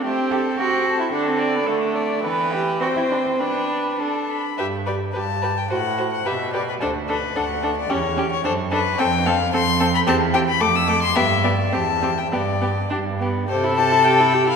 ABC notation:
X:1
M:2/4
L:1/16
Q:1/4=108
K:G
V:1 name="Violin"
g2 a2 g2 a2 | f2 a2 f2 a2 | g4 g4 | g4 a2 b2 |
e2 d2 a3 g | f3 f e2 d B | c2 B2 f3 d | ^c3 c =c2 B2 |
[K:C] g2 f2 c'3 b | a2 g b d' e' d' c' | e2 d2 a3 g | d4 z4 |
c2 a2 g3 f |]
V:2 name="Violin"
G2 A2 G2 A2 | A2 d2 A2 d2 | B4 c4 | B4 A2 z2 |
B2 B2 B2 B2 | c2 c2 B2 B2 | A2 A2 A2 A2 | G2 G2 A2 A2 |
[K:C] A2 A2 A2 A2 | G2 G2 A2 A2 | G2 G2 G2 G2 | G2 G2 G2 G2 |
A8 |]
V:3 name="Viola"
C4 C4 | D,4 D,4 | E,4 C4 | D4 D2 z2 |
G2 G2 G2 G2 | F2 F2 G2 G2 | D2 D2 D2 D2 | ^C2 C2 D2 D2 |
[K:C] C2 C2 C2 C2 | C2 C2 A,2 A,2 | B,2 B,2 C2 C2 | B,2 B,2 D2 B,2 |
G E G E G E G E |]
V:4 name="Cello" clef=bass
A,2 G2 F3 E | D C2 B, A,4 | B,2 G2 F E D C | B,4 z4 |
G,,4 G,,4 | A,,4 B,,4 | D,,4 D,,4 | E,,4 F,,4 |
[K:C] F,,4 F,,4 | E,,4 F,,4 | G,,4 E,,4 | G,,4 G,,4 |
C,8 |]